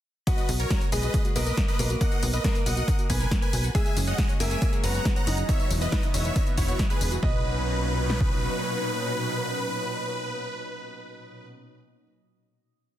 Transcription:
0.27 grand piano F#3 F#4, synth pluck A#3, supersaw synth B4 D#5, kick, closed hi-hat, tambourine
0.38 synth pluck F#4, closed hi-hat, tambourine
0.49 analog synth bass B1, synth pluck B3, open hi-hat, tambourine
0.60 synth pluck A#4, supersaw synth A#4 C#5, closed hi-hat, tambourine
0.70 synth pluck A#3, kick, snare, closed hi-hat, tambourine
0.81 synth pluck A#4, closed hi-hat, tambourine
0.92 analog synth bass B1, grand piano G#3 G#4, synth pluck B4, supersaw synth B4 D#5, open hi-hat, tambourine
1.03 synth pluck F#4, closed hi-hat, tambourine
1.14 synth pluck A#3, kick, closed hi-hat, tambourine
1.25 synth pluck F#4, closed hi-hat, tambourine
1.36 analog synth bass B1, grand piano A#3 A#4, synth pluck B3, supersaw synth B4 D#5, open hi-hat, tambourine
1.47 synth pluck A#4, closed hi-hat, tambourine
1.57 synth pluck A#3, kick, snare, closed hi-hat, tambourine
1.68 synth pluck A#4, supersaw synth B4 D#5, closed hi-hat, tambourine
1.79 analog synth bass B1, grand piano A#3 A#4, synth pluck B4, open hi-hat, tambourine
1.90 synth pluck F#4, closed hi-hat, tambourine
2.01 synth pluck A#3, supersaw synth D#5 F#5, kick, closed hi-hat, tambourine
2.12 synth pluck F#4, closed hi-hat, tambourine
2.23 analog synth bass B1, synth pluck B3, open hi-hat, tambourine
2.33 synth pluck A#4, supersaw synth B4 D#5, closed hi-hat, tambourine
2.44 synth pluck A#3, grand piano A#3 A#4, kick, snare, closed hi-hat, tambourine
2.55 synth pluck A#4, closed hi-hat, tambourine
2.66 analog synth bass B1, synth pluck B4, supersaw synth D#5 F#5, open hi-hat, tambourine
2.77 synth pluck F#4, closed hi-hat, tambourine
2.88 kick, closed hi-hat, tambourine
2.99 synth pluck F#4, closed hi-hat, tambourine
3.10 analog synth bass B1, synth pluck B3, supersaw synth B4 G#5, kick, open hi-hat, tambourine
3.20 synth pluck A#4, closed hi-hat, tambourine
3.31 synth pluck A#3, kick, snare, closed hi-hat, tambourine
3.42 synth pluck A#4, supersaw synth B4 G#5, closed hi-hat, tambourine
3.53 analog synth bass B1, synth pluck B4, open hi-hat, tambourine
3.64 synth pluck F#4, closed hi-hat, tambourine
3.75 analog synth pad F#3 G#3 C#4, grand piano G#3 G#4, synth pluck G#3, supersaw synth E5 G#5, kick, closed hi-hat, tambourine
3.86 synth pluck G#4, closed hi-hat, tambourine
3.97 analog synth bass F#1, synth pluck C#4, open hi-hat, tambourine
4.07 synth pluck C#5, supersaw synth D#5 F#5, closed hi-hat, tambourine
4.18 synth pluck G#3, kick, snare, closed hi-hat, tambourine
4.29 synth pluck C#5, closed hi-hat, tambourine
4.40 analog synth bass F#1, grand piano A#3 A#4, supersaw synth E5 G#5, synth pluck F#5, open hi-hat, tambourine
4.51 synth pluck G#4, closed hi-hat, tambourine
4.62 synth pluck G#3, kick, closed hi-hat, tambourine
4.73 synth pluck G#4, closed hi-hat, tambourine
4.84 analog synth bass F#1, grand piano B3 B4, synth pluck C#4, supersaw synth F#5 A#5, open hi-hat, tambourine
4.94 synth pluck C#5, closed hi-hat, tambourine
5.05 synth pluck G#3, kick, snare, closed hi-hat, tambourine
5.16 synth pluck C#5, supersaw synth F#5 A#5, closed hi-hat, tambourine
5.27 analog synth bass F#1, grand piano D#4 D#5, synth pluck F#5, open hi-hat, tambourine
5.38 synth pluck G#4, tambourine
5.49 analog synth pad E3 B3, synth pluck B3, supersaw synth C#5 E5, kick, closed hi-hat, tambourine
5.60 synth pluck B4, closed hi-hat, tambourine
5.70 analog synth bass E1, synth pluck E4, open hi-hat, tambourine
5.81 supersaw synth B4 D#5, synth pluck E5, closed hi-hat, tambourine
5.92 synth pluck B3, grand piano D#4 D#5, kick, snare, closed hi-hat, tambourine
6.03 synth pluck E5, closed hi-hat, tambourine
6.14 analog synth bass E1, supersaw synth C#5 E5, synth pluck F#5, open hi-hat, tambourine
6.25 synth pluck B4, closed hi-hat, tambourine
6.36 synth pluck B3, kick, closed hi-hat, tambourine
6.47 synth pluck B4, closed hi-hat, tambourine
6.57 analog synth bass E1, supersaw synth E4 C#5, synth pluck F#5, kick, open hi-hat, tambourine
6.68 synth pluck F#4, closed hi-hat, tambourine
6.79 synth pluck E5, kick, snare, closed hi-hat, tambourine
6.90 supersaw synth G#4 B4, synth pluck B4, closed hi-hat, tambourine
7.01 analog synth bass E1, synth pluck B4, open hi-hat, tambourine
7.12 synth pluck F#4, closed hi-hat, tambourine
7.23 analog synth bass B1, analog synth pad A#2 B2 F#3 C#4 D#4, synth pluck A#3, supersaw synth B4, grand piano D#5, kick
8.10 snare
8.21 kick

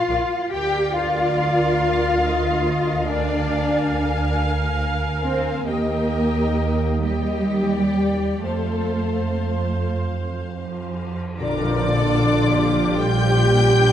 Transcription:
Already playing: cello section F4, violin section F5
0.10 double bass section A#1, viola section A#4 D5, violin section F5
0.51 double bass section D2, cello section G4, viola section A#4 D5, violin section F5 G5
0.93 cello section F4, violin section F5
2.21 viola section D#5, violin section F5
3.05 cello section D4, viola section A#4 F5, violin section D5 G#5
5.22 cello section C4, violin section C5
5.66 double bass section D#2, cello section A#3, viola section G4 D#5, violin section A#4 G5
7.03 cello section G3, viola section G4 D#5, violin section G4 G5
7.71 viola section D5
8.44 double bass section F2, cello section A3, violin section A4 F5, viola section C5
11.38 double bass section A#1, french horn section D3, viola section D3 F4, cello section A#4, violin section D5 D6, flute section D5, tam-tam
11.42 clarinet D4
11.66 viola section F3
11.91 viola section A#3, cello section A4
12.20 viola section D4
12.47 viola section A#3, cello section G4
12.73 viola section F3
12.96 viola section D3, french horn section G3, clarinet G4, violin section G5 G6, flute section G5
13.24 viola section F3
13.45 viola section A#3
13.69 viola section D4

